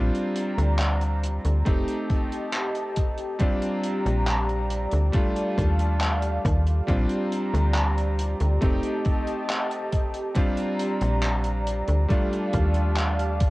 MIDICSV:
0, 0, Header, 1, 5, 480
1, 0, Start_track
1, 0, Key_signature, -2, "major"
1, 0, Tempo, 869565
1, 1880, Time_signature, 4, 2, 24, 8
1, 7452, End_track
2, 0, Start_track
2, 0, Title_t, "Analog synth pad"
2, 0, Program_c, 0, 89
2, 0, Note_on_c, 0, 67, 76
2, 0, Note_on_c, 0, 74, 69
2, 0, Note_on_c, 0, 82, 86
2, 913, Note_off_c, 0, 82, 0
2, 914, Note_off_c, 0, 74, 0
2, 921, Note_on_c, 0, 75, 69
2, 921, Note_on_c, 0, 81, 87
2, 1871, Note_off_c, 0, 75, 0
2, 1871, Note_off_c, 0, 81, 0
2, 1882, Note_on_c, 0, 74, 71
2, 1883, Note_on_c, 0, 82, 86
2, 2832, Note_off_c, 0, 82, 0
2, 2838, Note_on_c, 0, 77, 74
2, 2839, Note_on_c, 0, 81, 88
2, 3781, Note_off_c, 0, 67, 0
2, 3789, Note_off_c, 0, 77, 0
2, 3790, Note_off_c, 0, 81, 0
2, 3799, Note_on_c, 0, 67, 79
2, 3800, Note_on_c, 0, 82, 86
2, 4739, Note_off_c, 0, 74, 0
2, 4750, Note_off_c, 0, 82, 0
2, 4757, Note_on_c, 0, 75, 70
2, 4757, Note_on_c, 0, 81, 89
2, 5709, Note_off_c, 0, 75, 0
2, 5709, Note_off_c, 0, 81, 0
2, 5722, Note_on_c, 0, 74, 73
2, 5724, Note_on_c, 0, 82, 89
2, 6657, Note_off_c, 0, 67, 0
2, 6672, Note_off_c, 0, 82, 0
2, 6681, Note_on_c, 0, 77, 72
2, 6681, Note_on_c, 0, 81, 89
2, 6682, Note_on_c, 0, 67, 79
2, 7452, Note_off_c, 0, 67, 0
2, 7452, Note_off_c, 0, 74, 0
2, 7452, Note_off_c, 0, 77, 0
2, 7452, Note_off_c, 0, 81, 0
2, 7452, End_track
3, 0, Start_track
3, 0, Title_t, "Electric grand piano"
3, 0, Program_c, 1, 2
3, 0, Note_on_c, 1, 55, 73
3, 0, Note_on_c, 1, 60, 68
3, 0, Note_on_c, 1, 62, 67
3, 0, Note_on_c, 1, 65, 80
3, 66, Control_c, 1, 64, 127
3, 868, Note_off_c, 1, 55, 0
3, 871, Note_off_c, 1, 60, 0
3, 874, Note_off_c, 1, 62, 0
3, 877, Note_off_c, 1, 65, 0
3, 912, Note_on_c, 1, 57, 71
3, 916, Note_on_c, 1, 60, 65
3, 923, Note_on_c, 1, 63, 65
3, 926, Control_c, 1, 64, 0
3, 928, Note_on_c, 1, 67, 76
3, 1021, Control_c, 1, 64, 127
3, 1828, Note_off_c, 1, 57, 0
3, 1830, Note_off_c, 1, 60, 0
3, 1833, Note_off_c, 1, 63, 0
3, 1836, Note_off_c, 1, 67, 0
3, 1871, Note_on_c, 1, 55, 76
3, 1876, Note_on_c, 1, 60, 71
3, 1881, Note_on_c, 1, 62, 68
3, 1887, Note_on_c, 1, 65, 80
3, 1888, Control_c, 1, 64, 0
3, 1974, Control_c, 1, 64, 127
3, 2787, Note_off_c, 1, 55, 0
3, 2790, Note_off_c, 1, 60, 0
3, 2793, Note_off_c, 1, 62, 0
3, 2795, Note_off_c, 1, 65, 0
3, 2828, Note_on_c, 1, 55, 71
3, 2833, Note_on_c, 1, 57, 66
3, 2838, Note_on_c, 1, 62, 63
3, 2844, Note_on_c, 1, 65, 81
3, 2847, Control_c, 1, 64, 0
3, 2948, Control_c, 1, 64, 127
3, 3746, Note_off_c, 1, 55, 0
3, 3748, Note_off_c, 1, 57, 0
3, 3751, Note_off_c, 1, 62, 0
3, 3754, Note_off_c, 1, 65, 0
3, 3791, Note_on_c, 1, 55, 77
3, 3796, Note_on_c, 1, 60, 69
3, 3802, Note_on_c, 1, 62, 71
3, 3807, Note_on_c, 1, 65, 84
3, 3808, Control_c, 1, 64, 0
3, 3899, Control_c, 1, 64, 127
3, 4708, Note_off_c, 1, 55, 0
3, 4710, Note_off_c, 1, 60, 0
3, 4713, Note_off_c, 1, 62, 0
3, 4716, Note_off_c, 1, 65, 0
3, 4751, Note_on_c, 1, 57, 74
3, 4756, Note_on_c, 1, 60, 65
3, 4761, Note_on_c, 1, 63, 67
3, 4767, Control_c, 1, 64, 0
3, 4767, Note_on_c, 1, 67, 80
3, 4874, Control_c, 1, 64, 127
3, 5668, Note_off_c, 1, 57, 0
3, 5670, Note_off_c, 1, 60, 0
3, 5673, Note_off_c, 1, 63, 0
3, 5676, Note_off_c, 1, 67, 0
3, 5711, Note_on_c, 1, 55, 74
3, 5717, Note_on_c, 1, 60, 67
3, 5723, Note_on_c, 1, 62, 69
3, 5727, Note_on_c, 1, 65, 85
3, 5728, Control_c, 1, 64, 0
3, 5838, Control_c, 1, 64, 127
3, 6628, Note_off_c, 1, 55, 0
3, 6630, Note_off_c, 1, 60, 0
3, 6633, Note_off_c, 1, 62, 0
3, 6636, Note_off_c, 1, 65, 0
3, 6671, Note_on_c, 1, 55, 73
3, 6675, Note_on_c, 1, 57, 66
3, 6681, Note_on_c, 1, 62, 67
3, 6687, Control_c, 1, 64, 0
3, 6687, Note_on_c, 1, 65, 76
3, 6768, Control_c, 1, 64, 127
3, 7452, Note_off_c, 1, 55, 0
3, 7452, Note_off_c, 1, 57, 0
3, 7452, Note_off_c, 1, 62, 0
3, 7452, Note_off_c, 1, 65, 0
3, 7452, End_track
4, 0, Start_track
4, 0, Title_t, "FM bass"
4, 0, Program_c, 2, 39
4, 0, Note_on_c, 2, 34, 95
4, 62, Note_off_c, 2, 34, 0
4, 320, Note_on_c, 2, 38, 92
4, 768, Note_off_c, 2, 38, 0
4, 801, Note_on_c, 2, 38, 80
4, 900, Note_off_c, 2, 38, 0
4, 921, Note_on_c, 2, 29, 77
4, 1021, Note_off_c, 2, 29, 0
4, 2240, Note_on_c, 2, 34, 95
4, 2688, Note_off_c, 2, 34, 0
4, 2720, Note_on_c, 2, 38, 81
4, 2820, Note_off_c, 2, 38, 0
4, 3080, Note_on_c, 2, 39, 82
4, 3528, Note_off_c, 2, 39, 0
4, 3560, Note_on_c, 2, 39, 104
4, 3761, Note_off_c, 2, 39, 0
4, 3800, Note_on_c, 2, 34, 95
4, 3901, Note_off_c, 2, 34, 0
4, 4160, Note_on_c, 2, 38, 94
4, 4609, Note_off_c, 2, 38, 0
4, 4640, Note_on_c, 2, 38, 82
4, 4740, Note_off_c, 2, 38, 0
4, 4760, Note_on_c, 2, 29, 76
4, 4861, Note_off_c, 2, 29, 0
4, 6081, Note_on_c, 2, 34, 93
4, 6529, Note_off_c, 2, 34, 0
4, 6560, Note_on_c, 2, 38, 83
4, 6660, Note_off_c, 2, 38, 0
4, 6921, Note_on_c, 2, 39, 87
4, 7452, Note_off_c, 2, 39, 0
4, 7452, End_track
5, 0, Start_track
5, 0, Title_t, "Drums"
5, 81, Note_on_c, 9, 42, 56
5, 136, Note_off_c, 9, 42, 0
5, 197, Note_on_c, 9, 42, 95
5, 252, Note_off_c, 9, 42, 0
5, 322, Note_on_c, 9, 42, 47
5, 377, Note_off_c, 9, 42, 0
5, 435, Note_on_c, 9, 39, 119
5, 442, Note_on_c, 9, 42, 75
5, 490, Note_off_c, 9, 39, 0
5, 497, Note_off_c, 9, 42, 0
5, 559, Note_on_c, 9, 42, 51
5, 614, Note_off_c, 9, 42, 0
5, 682, Note_on_c, 9, 42, 101
5, 737, Note_off_c, 9, 42, 0
5, 799, Note_on_c, 9, 42, 53
5, 854, Note_off_c, 9, 42, 0
5, 917, Note_on_c, 9, 42, 70
5, 920, Note_on_c, 9, 36, 115
5, 972, Note_off_c, 9, 42, 0
5, 976, Note_off_c, 9, 36, 0
5, 1037, Note_on_c, 9, 42, 56
5, 1093, Note_off_c, 9, 42, 0
5, 1158, Note_on_c, 9, 42, 96
5, 1160, Note_on_c, 9, 36, 93
5, 1214, Note_off_c, 9, 42, 0
5, 1215, Note_off_c, 9, 36, 0
5, 1282, Note_on_c, 9, 42, 54
5, 1337, Note_off_c, 9, 42, 0
5, 1393, Note_on_c, 9, 42, 78
5, 1398, Note_on_c, 9, 39, 117
5, 1448, Note_off_c, 9, 42, 0
5, 1453, Note_off_c, 9, 39, 0
5, 1518, Note_on_c, 9, 42, 48
5, 1573, Note_off_c, 9, 42, 0
5, 1634, Note_on_c, 9, 42, 94
5, 1640, Note_on_c, 9, 36, 57
5, 1690, Note_off_c, 9, 42, 0
5, 1695, Note_off_c, 9, 36, 0
5, 1753, Note_on_c, 9, 42, 51
5, 1808, Note_off_c, 9, 42, 0
5, 1874, Note_on_c, 9, 42, 67
5, 1880, Note_on_c, 9, 36, 116
5, 1930, Note_off_c, 9, 42, 0
5, 1935, Note_off_c, 9, 36, 0
5, 1998, Note_on_c, 9, 42, 54
5, 2053, Note_off_c, 9, 42, 0
5, 2117, Note_on_c, 9, 42, 101
5, 2172, Note_off_c, 9, 42, 0
5, 2241, Note_on_c, 9, 42, 48
5, 2297, Note_off_c, 9, 42, 0
5, 2354, Note_on_c, 9, 42, 74
5, 2358, Note_on_c, 9, 39, 127
5, 2409, Note_off_c, 9, 42, 0
5, 2413, Note_off_c, 9, 39, 0
5, 2479, Note_on_c, 9, 42, 53
5, 2534, Note_off_c, 9, 42, 0
5, 2596, Note_on_c, 9, 42, 95
5, 2651, Note_off_c, 9, 42, 0
5, 2713, Note_on_c, 9, 42, 54
5, 2768, Note_off_c, 9, 42, 0
5, 2834, Note_on_c, 9, 42, 73
5, 2839, Note_on_c, 9, 36, 116
5, 2889, Note_off_c, 9, 42, 0
5, 2894, Note_off_c, 9, 36, 0
5, 2960, Note_on_c, 9, 42, 57
5, 3015, Note_off_c, 9, 42, 0
5, 3079, Note_on_c, 9, 36, 58
5, 3083, Note_on_c, 9, 42, 99
5, 3134, Note_off_c, 9, 36, 0
5, 3138, Note_off_c, 9, 42, 0
5, 3197, Note_on_c, 9, 42, 57
5, 3252, Note_off_c, 9, 42, 0
5, 3316, Note_on_c, 9, 39, 118
5, 3319, Note_on_c, 9, 42, 80
5, 3371, Note_off_c, 9, 39, 0
5, 3374, Note_off_c, 9, 42, 0
5, 3435, Note_on_c, 9, 42, 57
5, 3490, Note_off_c, 9, 42, 0
5, 3560, Note_on_c, 9, 36, 106
5, 3563, Note_on_c, 9, 42, 104
5, 3615, Note_off_c, 9, 36, 0
5, 3618, Note_off_c, 9, 42, 0
5, 3680, Note_on_c, 9, 42, 49
5, 3735, Note_off_c, 9, 42, 0
5, 3799, Note_on_c, 9, 42, 69
5, 3800, Note_on_c, 9, 36, 115
5, 3855, Note_off_c, 9, 36, 0
5, 3855, Note_off_c, 9, 42, 0
5, 3915, Note_on_c, 9, 42, 55
5, 3970, Note_off_c, 9, 42, 0
5, 4041, Note_on_c, 9, 42, 90
5, 4096, Note_off_c, 9, 42, 0
5, 4166, Note_on_c, 9, 42, 53
5, 4221, Note_off_c, 9, 42, 0
5, 4274, Note_on_c, 9, 39, 122
5, 4280, Note_on_c, 9, 42, 74
5, 4330, Note_off_c, 9, 39, 0
5, 4335, Note_off_c, 9, 42, 0
5, 4404, Note_on_c, 9, 42, 50
5, 4459, Note_off_c, 9, 42, 0
5, 4520, Note_on_c, 9, 42, 99
5, 4575, Note_off_c, 9, 42, 0
5, 4637, Note_on_c, 9, 42, 50
5, 4693, Note_off_c, 9, 42, 0
5, 4756, Note_on_c, 9, 42, 70
5, 4760, Note_on_c, 9, 36, 118
5, 4811, Note_off_c, 9, 42, 0
5, 4815, Note_off_c, 9, 36, 0
5, 4874, Note_on_c, 9, 42, 56
5, 4930, Note_off_c, 9, 42, 0
5, 4994, Note_on_c, 9, 42, 91
5, 5000, Note_on_c, 9, 36, 101
5, 5050, Note_off_c, 9, 42, 0
5, 5055, Note_off_c, 9, 36, 0
5, 5117, Note_on_c, 9, 42, 53
5, 5172, Note_off_c, 9, 42, 0
5, 5240, Note_on_c, 9, 42, 68
5, 5242, Note_on_c, 9, 39, 123
5, 5296, Note_off_c, 9, 42, 0
5, 5297, Note_off_c, 9, 39, 0
5, 5360, Note_on_c, 9, 42, 54
5, 5416, Note_off_c, 9, 42, 0
5, 5478, Note_on_c, 9, 42, 89
5, 5481, Note_on_c, 9, 36, 60
5, 5534, Note_off_c, 9, 42, 0
5, 5536, Note_off_c, 9, 36, 0
5, 5598, Note_on_c, 9, 42, 54
5, 5653, Note_off_c, 9, 42, 0
5, 5715, Note_on_c, 9, 42, 66
5, 5721, Note_on_c, 9, 36, 116
5, 5770, Note_off_c, 9, 42, 0
5, 5776, Note_off_c, 9, 36, 0
5, 5836, Note_on_c, 9, 42, 54
5, 5891, Note_off_c, 9, 42, 0
5, 5959, Note_on_c, 9, 42, 89
5, 6014, Note_off_c, 9, 42, 0
5, 6078, Note_on_c, 9, 42, 52
5, 6133, Note_off_c, 9, 42, 0
5, 6197, Note_on_c, 9, 39, 109
5, 6200, Note_on_c, 9, 42, 66
5, 6253, Note_off_c, 9, 39, 0
5, 6255, Note_off_c, 9, 42, 0
5, 6315, Note_on_c, 9, 42, 55
5, 6370, Note_off_c, 9, 42, 0
5, 6442, Note_on_c, 9, 42, 84
5, 6497, Note_off_c, 9, 42, 0
5, 6556, Note_on_c, 9, 42, 51
5, 6611, Note_off_c, 9, 42, 0
5, 6681, Note_on_c, 9, 36, 120
5, 6681, Note_on_c, 9, 42, 67
5, 6736, Note_off_c, 9, 36, 0
5, 6736, Note_off_c, 9, 42, 0
5, 6805, Note_on_c, 9, 42, 48
5, 6861, Note_off_c, 9, 42, 0
5, 6918, Note_on_c, 9, 42, 92
5, 6921, Note_on_c, 9, 36, 57
5, 6973, Note_off_c, 9, 42, 0
5, 6976, Note_off_c, 9, 36, 0
5, 7034, Note_on_c, 9, 42, 51
5, 7090, Note_off_c, 9, 42, 0
5, 7157, Note_on_c, 9, 39, 107
5, 7164, Note_on_c, 9, 42, 66
5, 7212, Note_off_c, 9, 39, 0
5, 7219, Note_off_c, 9, 42, 0
5, 7282, Note_on_c, 9, 42, 53
5, 7338, Note_off_c, 9, 42, 0
5, 7398, Note_on_c, 9, 42, 97
5, 7401, Note_on_c, 9, 36, 104
5, 7452, Note_off_c, 9, 36, 0
5, 7452, Note_off_c, 9, 42, 0
5, 7452, End_track
0, 0, End_of_file